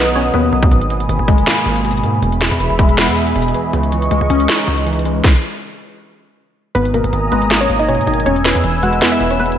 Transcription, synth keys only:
0.00 0.14 B2 medium
0.00 0.33 D#3 medium
0.00 0.51 F#3 medium
0.00 0.71 B3 medium
0.00 0.71 D#4 medium
0.15 0.72 B2 medium
0.34 0.71 D#3 medium
0.53 0.71 F#3 medium
0.72 1.65 G#2 medium
0.90 1.84 B2 medium
1.09 2.02 D#3 medium
1.28 2.22 G#3 loud
1.47 2.23 A#3 medium
1.66 2.22 G#2 medium
1.85 2.22 B2 medium
2.04 2.22 D#3 medium
2.22 3.15 E2 medium
2.42 3.34 B2 medium
2.60 3.53 E3 medium
2.79 3.74 G#3 loud
2.98 3.73 B3 medium
3.17 3.73 E2 medium
3.36 3.73 B2 medium
3.55 3.73 E3 medium
3.74 4.66 C#3 medium
3.92 4.85 E3 medium
4.11 5.04 G#3 medium
4.30 5.24 C#4 loud
4.49 5.24 D#4 medium
4.68 5.24 C#3 medium
4.87 5.24 E3 medium
5.06 5.24 G#3 medium
6.75 7.68 G#2 medium
6.94 7.87 B2 medium
7.13 8.06 D#3 medium
7.32 8.26 G#3 medium
7.51 8.26 A#3 medium
7.70 8.26 G#2 medium
7.89 8.26 B2 medium
8.07 8.26 D#3 medium
8.26 9.19 E2 medium
8.45 9.38 B2 medium
8.64 9.57 E3 medium
8.83 9.58 G#3 loud
9.02 9.58 B3 medium
9.20 9.58 E2 medium
9.39 9.58 B2 medium

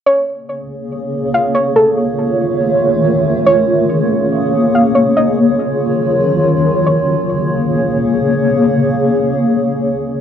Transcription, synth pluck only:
0.06 1.30 C#5 loud
1.34 1.54 F5 medium
1.55 1.75 C#5 medium
1.76 3.42 A4 medium
3.46 4.70 C#5 loud
4.75 4.95 F5 medium
4.95 5.15 C#5 medium
5.17 5.98 D#5 loud
6.87 8.10 C#5 medium

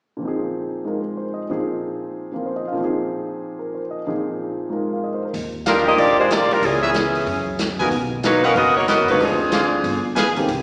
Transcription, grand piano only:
0.17 1.47 A#2 soft
0.17 1.48 F3 soft
0.22 1.49 C4 soft
0.22 0.84 D#4 soft
0.28 1.50 G#4 soft
0.84 1.49 G#3 soft
0.84 1.49 D#4 soft
0.84 1.50 F4 soft
0.84 1.00 A#4 soft
1.02 1.24 A#4 soft
1.17 1.41 C5 soft
1.34 1.56 D#5 soft
1.50 2.71 A#2 soft
1.50 2.31 F3 soft
1.50 2.32 C4 soft
1.50 2.78 D#4 soft
1.50 2.78 G#4 soft
2.32 2.74 F3 soft
2.32 2.77 A#3 soft
2.32 2.77 C4 soft
2.32 2.78 F4 soft
2.32 2.51 A#4 soft
2.46 2.64 C5 soft
2.56 2.72 D#5 soft
2.68 2.83 F5 soft
2.72 4.03 A#2 soft
2.72 4.05 F3 soft
2.78 4.06 C4 soft
2.78 4.06 D#4 soft
2.84 4.07 G#4 medium
3.59 3.81 A#4 soft
3.75 3.99 C5 soft
3.91 4.13 D#5 soft
4.07 5.35 A#2 soft
4.07 5.35 F3 soft
4.07 5.35 C4 soft
4.07 4.69 D#4 soft
4.07 5.36 G#4 medium
4.69 5.34 G#3 soft
4.69 5.34 D#4 soft
4.69 5.35 F4 soft
4.69 5.23 A#4 soft
4.93 5.08 F5 soft
5.04 5.22 D#5 soft
5.14 5.30 C5 soft
5.25 5.40 A#4 soft
5.88 6.29 F3 medium
5.88 6.29 D4 soft
5.88 6.29 D#4 soft
5.88 6.29 G4 medium
7.81 7.91 D#3 medium
7.81 7.91 A#3 medium
7.81 7.91 B3 medium
7.81 7.91 F#4 medium
9.09 9.19 D3 medium
9.09 9.20 G#3 medium
9.09 9.20 C4 soft
9.09 9.20 F4 medium
10.37 10.48 D#3 medium
10.37 10.48 A#3 medium
10.37 10.48 C4 medium
10.37 10.48 G4 medium

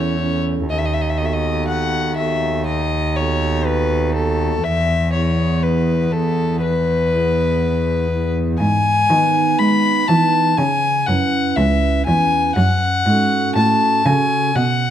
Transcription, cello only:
0.00 0.65 E2 medium
0.69 4.61 D#2 medium
4.65 8.56 E2 medium
8.60 9.06 G#2 medium
9.10 9.56 D#3 medium
9.59 10.05 G#3 medium
10.09 10.55 E3 medium
10.58 11.04 C#3 medium
11.08 11.54 F#2 medium
11.57 12.03 C#2 medium
12.07 12.53 E2 medium
12.56 13.03 F#2 medium
13.06 13.52 G#2 medium
13.56 14.02 A2 medium
14.05 14.52 C#3 medium
14.55 14.90 B2 medium

